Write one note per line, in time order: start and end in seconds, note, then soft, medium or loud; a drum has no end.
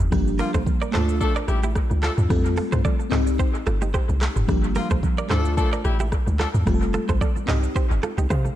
0.00 0.14 C4 medium
0.00 0.14 D#4 medium
0.00 0.11 G4 medium
0.00 floor tom loud
0.00 shaker medium
0.11 0.42 G1 loud
0.11 0.93 F3 medium
0.11 0.94 G3 medium
0.11 0.94 A#3 medium
0.11 0.93 D4 medium
0.11 0.95 G4 medium
0.11 kick loud
0.11 cross-stick loud
0.11 low conga medium
0.11 shaker medium
0.27 shaker medium
0.39 0.51 D3 medium
0.39 0.51 F3 medium
0.39 0.51 A#3 medium
0.39 0.51 F4 medium
0.39 0.50 G4 medium
0.39 0.49 A#4 medium
0.39 open hi-hat medium
0.39 high conga medium
0.39 shaker medium
0.54 0.63 A#1 medium
0.54 0.63 A4 medium
0.54 0.62 C5 medium
0.54 kick loud
0.54 cross-stick loud
0.54 shaker medium
0.66 kick loud
0.66 low conga medium
0.66 shaker medium
0.82 0.90 A#4 medium
0.82 0.90 D5 medium
0.82 shaker medium
0.91 1.24 D2 medium
0.91 1.16 F3 medium
0.91 2.26 A3 medium
0.91 1.16 A3 medium
0.91 1.16 D4 medium
0.91 2.28 D4 medium
0.91 1.16 A4 medium
0.91 1.04 A4 medium
0.91 1.04 C5 medium
0.91 cross-stick medium
0.91 clap loud
0.91 mid tom medium
0.91 high conga medium
0.91 shaker medium
0.96 2.29 F4 medium
1.09 shaker medium
1.21 1.33 F3 loud
1.21 1.33 A3 loud
1.21 1.33 D4 loud
1.21 1.33 A4 loud
1.21 kick loud
1.21 shaker medium
1.36 1.45 A#4 medium
1.36 1.44 D5 medium
1.36 shaker soft
1.48 1.78 A1 medium
1.48 1.60 G3 medium
1.48 1.60 E4 medium
1.48 1.60 G4 medium
1.48 cross-stick medium
1.48 high conga medium
1.48 shaker medium
1.63 1.72 E4 medium
1.63 1.71 G4 medium
1.63 high conga medium
1.63 shaker loud
1.75 kick medium
1.75 cross-stick medium
1.75 shaker medium
1.91 2.10 D2 medium
1.91 high conga medium
1.91 shaker medium
2.02 2.12 F3 medium
2.02 2.12 A3 medium
2.02 2.12 D4 medium
2.02 2.13 F4 medium
2.02 2.12 A4 medium
2.02 2.13 A4 medium
2.02 cross-stick loud
2.02 clap loud
2.02 high conga medium
2.02 shaker medium
2.18 2.27 E2 medium
2.18 mid tom loud
2.18 shaker medium
2.29 2.60 F2 loud
2.29 3.12 G3 medium
2.29 3.12 A3 medium
2.29 3.08 C4 medium
2.29 3.12 F4 medium
2.29 3.13 A4 medium
2.29 kick loud
2.29 cross-stick loud
2.29 low conga medium
2.29 shaker medium
2.45 shaker medium
2.57 2.68 F4 medium
2.57 2.67 A4 medium
2.57 open hi-hat medium
2.57 high conga medium
2.57 shaker medium
2.72 2.81 G2 medium
2.72 2.81 A4 medium
2.72 2.80 C5 medium
2.72 kick loud
2.72 cross-stick loud
2.72 shaker medium
2.85 2.95 A4 medium
2.85 2.95 D5 medium
2.85 kick loud
2.85 low conga medium
2.85 shaker medium
3.00 shaker medium
3.10 3.42 C2 loud
3.10 4.45 C4 medium
3.10 4.46 D#4 medium
3.10 3.22 C5 medium
3.10 3.22 D#5 medium
3.10 cross-stick loud
3.10 clap medium
3.10 mid tom loud
3.10 high conga medium
3.10 shaker medium
3.15 4.47 G4 medium
3.27 shaker medium
3.39 3.50 G4 medium
3.39 3.49 C5 medium
3.39 kick loud
3.39 shaker medium
3.55 shaker soft
3.67 3.97 G1 medium
3.67 3.77 F4 medium
3.67 3.77 A4 medium
3.67 cross-stick medium
3.67 high conga medium
3.67 shaker medium
3.82 3.90 D#4 medium
3.82 3.90 G4 medium
3.82 high conga medium
3.82 shaker loud
3.94 4.12 G4 medium
3.94 4.12 C5 medium
3.94 kick medium
3.94 cross-stick medium
3.94 shaker medium
4.09 4.28 C2 medium
4.09 high conga medium
4.09 shaker soft
4.21 cross-stick medium
4.21 clap loud
4.21 high conga medium
4.21 shaker medium
4.36 4.45 F1 medium
4.36 mid tom loud
4.36 shaker medium
4.47 4.78 G1 loud
4.47 5.30 F3 medium
4.47 5.30 G3 medium
4.47 5.30 A#3 medium
4.47 5.29 D4 medium
4.47 5.31 G4 medium
4.47 kick loud
4.47 cross-stick loud
4.47 low conga medium
4.47 shaker medium
4.64 shaker medium
4.75 4.88 D3 medium
4.75 4.88 F3 medium
4.75 4.88 A#3 medium
4.75 4.88 F4 medium
4.75 4.86 G4 medium
4.75 4.86 A#4 medium
4.75 open hi-hat medium
4.75 high conga medium
4.75 shaker medium
4.91 5.00 A#1 medium
4.91 4.99 A4 medium
4.91 4.99 C5 medium
4.91 kick loud
4.91 cross-stick medium
4.91 shaker medium
5.03 kick loud
5.03 low conga medium
5.03 shaker medium
5.18 5.27 A#4 medium
5.18 5.26 D5 medium
5.18 shaker medium
5.28 5.60 D2 medium
5.28 5.52 F3 medium
5.28 6.63 A3 medium
5.28 5.52 A3 medium
5.28 5.52 D4 medium
5.28 6.64 D4 medium
5.28 5.52 A4 loud
5.28 5.41 A4 medium
5.28 5.40 C5 medium
5.28 cross-stick medium
5.28 clap medium
5.28 mid tom medium
5.28 high conga medium
5.28 shaker medium
5.33 5.39 E4 medium
5.39 6.66 F4 medium
5.45 shaker loud
5.57 5.70 F3 loud
5.57 5.70 A3 loud
5.57 5.70 D4 loud
5.57 5.70 A4 loud
5.57 kick loud
5.57 shaker medium
5.73 5.81 A#4 medium
5.73 5.81 D5 medium
5.73 shaker medium
5.85 6.15 A1 medium
5.85 5.97 G3 medium
5.85 5.97 E4 medium
5.85 5.97 G4 medium
5.85 cross-stick medium
5.85 high conga medium
5.85 shaker medium
6.00 6.09 E4 medium
6.00 6.08 G4 medium
6.00 high conga medium
6.00 shaker loud
6.12 kick medium
6.12 cross-stick medium
6.12 shaker medium
6.27 6.46 D2 medium
6.27 high conga medium
6.27 shaker soft
6.39 6.48 F3 medium
6.39 6.48 A3 medium
6.39 6.49 D4 medium
6.39 6.50 F4 medium
6.39 6.48 A4 medium
6.39 6.49 A4 medium
6.39 cross-stick loud
6.39 clap loud
6.39 high conga medium
6.39 shaker soft
6.54 6.63 E2 medium
6.54 mid tom medium
6.54 shaker medium
6.65 6.97 F1 loud
6.65 7.48 G3 medium
6.65 7.48 A3 medium
6.65 7.45 C4 medium
6.65 7.49 F4 medium
6.65 6.74 G4 medium
6.65 kick loud
6.65 cross-stick loud
6.65 low conga medium
6.65 shaker medium
6.74 7.52 A4 medium
6.82 shaker medium
6.93 7.04 F4 medium
6.93 7.04 A4 medium
6.93 high conga medium
6.93 shaker medium
7.09 7.18 A1 medium
7.09 7.18 A4 medium
7.09 7.17 C5 medium
7.09 kick loud
7.09 cross-stick medium
7.09 shaker medium
7.21 7.32 A4 medium
7.21 7.31 D5 medium
7.21 kick loud
7.21 low conga medium
7.21 shaker medium
7.36 high conga medium
7.36 shaker medium
7.46 7.68 C2 medium
7.46 8.56 C4 medium
7.46 8.56 D#4 medium
7.46 7.59 C5 medium
7.46 7.58 D#5 medium
7.46 cross-stick medium
7.46 clap medium
7.46 mid tom medium
7.46 high conga medium
7.46 shaker medium
7.51 8.56 G4 medium
7.63 shaker medium
7.76 7.86 G4 medium
7.76 7.86 C5 medium
7.76 kick loud
7.76 shaker medium
7.91 7.99 G1 loud
7.91 shaker soft
8.03 8.14 F4 medium
8.03 8.13 A4 medium
8.03 cross-stick medium
8.03 high conga medium
8.03 shaker medium
8.18 8.27 C2 medium
8.18 8.27 D#4 medium
8.18 8.26 G4 medium
8.18 high conga medium
8.18 shaker medium
8.30 8.50 C3 loud
8.30 8.49 G4 medium
8.30 8.48 C5 medium
8.30 8.56 F5 medium
8.30 kick medium
8.30 cross-stick medium
8.30 shaker medium
8.45 high conga medium
8.45 shaker medium